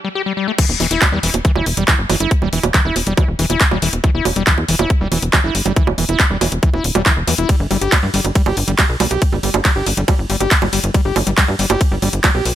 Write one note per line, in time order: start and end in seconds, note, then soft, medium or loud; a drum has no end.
0.04 0.09 G3 medium
0.15 0.22 G4 medium
0.26 0.33 G3 medium
0.37 0.47 G3 medium
0.48 0.52 A3 medium
0.58 0.65 E3 medium
0.58 kick loud
0.58 closed hi-hat medium
0.58 crash loud
0.69 0.76 E1 medium
0.80 0.87 E1 loud
0.80 0.87 E3 medium
0.80 open hi-hat loud
0.80 high bongo soft
0.91 0.98 E1 medium
0.91 1.01 E4 medium
0.91 closed hi-hat medium
1.02 kick loud
1.02 clap loud
1.02 closed hi-hat medium
1.02 high bongo medium
1.12 1.19 E2 medium
1.12 1.19 G3 loud
1.23 1.30 E1 loud
1.23 1.30 E3 medium
1.23 open hi-hat loud
1.34 1.41 E1 medium
1.34 closed hi-hat medium
1.34 high bongo soft
1.45 1.51 E3 medium
1.45 kick loud
1.45 closed hi-hat medium
1.56 1.63 E1 medium
1.56 1.66 E4 medium
1.56 high bongo medium
1.66 1.73 E1 loud
1.66 open hi-hat loud
1.77 1.84 E1 medium
1.77 1.84 G3 loud
1.77 closed hi-hat medium
1.88 1.95 E3 medium
1.88 kick loud
1.88 clap loud
1.88 closed hi-hat medium
1.88 high bongo soft
1.99 2.06 G1 medium
2.10 2.17 G1 loud
2.10 2.16 E3 medium
2.10 open hi-hat loud
2.10 high bongo medium
2.20 2.27 G1 medium
2.20 2.30 E4 medium
2.20 closed hi-hat medium
2.31 kick loud
2.31 closed hi-hat medium
2.42 2.49 E1 medium
2.42 2.49 G3 loud
2.42 high bongo soft
2.53 2.60 E1 loud
2.53 2.59 E3 medium
2.53 open hi-hat loud
2.63 2.71 E1 medium
2.63 closed hi-hat medium
2.63 high bongo medium
2.74 2.81 E3 medium
2.74 kick loud
2.74 clap loud
2.74 closed hi-hat medium
2.85 2.92 E1 medium
2.85 2.95 E4 medium
2.96 3.03 E1 loud
2.96 open hi-hat loud
2.96 high bongo soft
3.07 3.14 E1 medium
3.07 3.13 G3 loud
3.07 closed hi-hat medium
3.17 3.24 E3 medium
3.17 kick loud
3.17 closed hi-hat medium
3.17 high bongo medium
3.28 3.35 E1 medium
3.39 3.46 E1 loud
3.39 3.46 E3 medium
3.39 open hi-hat loud
3.50 3.57 E1 medium
3.50 3.60 E4 medium
3.50 closed hi-hat medium
3.50 high bongo soft
3.61 kick loud
3.61 clap loud
3.61 closed hi-hat medium
3.71 3.78 E1 medium
3.71 3.78 G3 loud
3.71 high bongo medium
3.82 3.89 E1 loud
3.82 3.89 E3 medium
3.82 open hi-hat loud
3.93 4.00 E1 medium
3.93 closed hi-hat medium
4.04 4.10 E3 medium
4.04 kick loud
4.04 closed hi-hat medium
4.04 high bongo soft
4.15 4.22 E1 medium
4.15 4.25 E4 medium
4.25 4.32 E1 loud
4.25 open hi-hat loud
4.25 high bongo medium
4.36 4.43 E1 medium
4.36 4.43 G3 loud
4.36 closed hi-hat medium
4.47 4.54 E3 medium
4.47 kick loud
4.47 clap loud
4.47 closed hi-hat medium
4.58 4.65 E2 medium
4.58 high bongo soft
4.68 4.76 E1 loud
4.68 4.75 E3 medium
4.68 open hi-hat loud
4.79 4.86 E1 medium
4.79 4.89 E4 medium
4.79 closed hi-hat medium
4.79 high bongo medium
4.90 kick loud
4.90 closed hi-hat medium
5.01 5.08 E1 medium
5.01 5.08 G3 loud
5.12 5.19 E1 loud
5.12 5.18 E3 medium
5.12 open hi-hat loud
5.12 high bongo soft
5.22 5.30 E1 medium
5.22 closed hi-hat medium
5.33 5.40 E3 medium
5.33 kick loud
5.33 clap loud
5.33 closed hi-hat medium
5.33 high bongo medium
5.44 5.51 G1 medium
5.44 5.54 E4 medium
5.55 5.62 G1 loud
5.55 open hi-hat loud
5.66 5.73 G1 loud
5.66 5.72 G3 loud
5.66 closed hi-hat medium
5.66 high bongo soft
5.76 5.83 E3 medium
5.76 kick loud
5.76 closed hi-hat medium
5.87 5.94 E1 medium
5.87 high bongo medium
5.98 6.05 E1 loud
5.98 6.05 E3 medium
5.98 open hi-hat loud
6.09 6.16 E1 medium
6.09 6.19 E4 medium
6.09 closed hi-hat medium
6.20 kick loud
6.20 clap loud
6.20 closed hi-hat medium
6.20 high bongo soft
6.30 6.37 E1 medium
6.30 6.37 G3 loud
6.41 6.48 E1 loud
6.41 6.48 E3 medium
6.41 open hi-hat loud
6.41 high bongo medium
6.52 6.59 E1 medium
6.52 closed hi-hat medium
6.63 6.69 E3 medium
6.63 kick loud
6.63 closed hi-hat medium
6.74 6.81 E1 medium
6.74 6.84 E4 medium
6.74 high bongo soft
6.84 6.91 D1 loud
6.84 open hi-hat loud
6.95 7.02 E1 medium
6.95 7.02 G3 loud
6.95 closed hi-hat medium
6.95 high bongo medium
7.06 7.13 E3 medium
7.06 kick loud
7.06 clap loud
7.06 closed hi-hat medium
7.17 7.24 E1 medium
7.27 7.35 E2 loud
7.27 7.34 E3 medium
7.27 open hi-hat loud
7.27 high bongo soft
7.38 7.45 E1 loud
7.38 7.48 E4 medium
7.38 closed hi-hat medium
7.49 7.56 G3 medium
7.49 kick loud
7.49 closed hi-hat medium
7.49 ride medium
7.60 7.67 G1 medium
7.71 7.78 G1 loud
7.71 7.77 G3 medium
7.71 open hi-hat loud
7.71 high bongo soft
7.81 7.89 G1 medium
7.81 7.92 G4 medium
7.81 closed hi-hat medium
7.92 kick loud
7.92 clap loud
7.92 closed hi-hat medium
7.92 ride medium
7.92 high bongo medium
8.03 8.10 G2 medium
8.03 8.07 G3 medium
8.14 8.21 G1 loud
8.14 8.21 G3 medium
8.14 open hi-hat loud
8.25 8.32 G1 loud
8.25 closed hi-hat medium
8.25 high bongo soft
8.35 8.42 G3 medium
8.35 kick loud
8.35 closed hi-hat medium
8.35 ride medium
8.46 8.53 G1 medium
8.46 8.56 G4 medium
8.46 high bongo medium
8.57 8.64 G1 loud
8.57 open hi-hat loud
8.68 8.75 G1 medium
8.68 8.72 G3 medium
8.68 closed hi-hat medium
8.79 8.85 G3 medium
8.79 kick loud
8.79 clap loud
8.79 closed hi-hat medium
8.79 ride medium
8.79 high bongo soft
8.89 8.96 B1 medium
9.00 9.07 B1 loud
9.00 9.07 G3 medium
9.00 open hi-hat loud
9.00 high bongo medium
9.11 9.18 B1 loud
9.11 9.21 G4 medium
9.11 closed hi-hat medium
9.22 kick loud
9.22 closed hi-hat medium
9.22 ride medium
9.32 9.40 G1 medium
9.32 9.37 G3 medium
9.32 high bongo soft
9.43 9.50 G1 loud
9.43 9.50 G3 medium
9.43 open hi-hat loud
9.54 9.61 G1 medium
9.54 closed hi-hat medium
9.54 high bongo medium
9.65 9.72 G3 medium
9.65 kick loud
9.65 clap loud
9.65 closed hi-hat medium
9.65 ride medium
9.76 9.83 G1 medium
9.76 9.86 G4 medium
9.86 9.94 G1 loud
9.86 open hi-hat loud
9.86 high bongo soft
9.97 10.04 G1 medium
9.97 10.01 G3 medium
9.97 closed hi-hat medium
10.08 10.15 G3 medium
10.08 kick loud
10.08 closed hi-hat medium
10.08 ride medium
10.08 high bongo medium
10.19 10.26 G1 medium
10.30 10.37 G1 loud
10.30 10.36 G3 medium
10.30 open hi-hat loud
10.40 10.48 G1 medium
10.40 10.51 G4 medium
10.40 closed hi-hat medium
10.40 high bongo soft
10.51 kick loud
10.51 clap loud
10.51 closed hi-hat medium
10.51 ride medium
10.62 10.69 G1 medium
10.62 10.66 G3 medium
10.62 high bongo medium
10.73 10.80 G1 loud
10.73 10.80 G3 medium
10.73 open hi-hat loud
10.84 10.91 G1 medium
10.84 closed hi-hat medium
10.94 11.01 G3 medium
10.94 kick loud
10.94 closed hi-hat medium
10.94 ride medium
10.94 high bongo soft
11.05 11.12 G1 medium
11.05 11.15 G4 medium
11.16 11.23 G1 loud
11.16 open hi-hat loud
11.16 high bongo medium
11.27 11.34 G1 medium
11.27 11.31 G3 medium
11.27 closed hi-hat medium
11.38 11.44 G3 medium
11.38 kick loud
11.38 clap loud
11.38 closed hi-hat medium
11.38 ride medium
11.48 11.55 G2 medium
11.48 high bongo soft
11.59 11.66 G1 loud
11.59 11.66 G3 medium
11.59 open hi-hat loud
11.70 11.77 G1 medium
11.70 11.80 G4 medium
11.70 closed hi-hat medium
11.70 high bongo medium
11.81 kick loud
11.81 closed hi-hat medium
11.81 ride medium
11.91 11.99 G1 medium
11.91 11.96 G3 medium
12.02 12.09 G1 loud
12.02 12.09 G3 medium
12.02 open hi-hat loud
12.02 high bongo soft
12.13 12.20 G1 medium
12.13 closed hi-hat medium
12.24 12.31 G3 medium
12.24 kick loud
12.24 clap loud
12.24 closed hi-hat medium
12.24 ride medium
12.24 high bongo medium
12.35 12.42 B1 medium
12.35 12.45 G4 medium
12.45 12.53 B1 loud
12.45 open hi-hat loud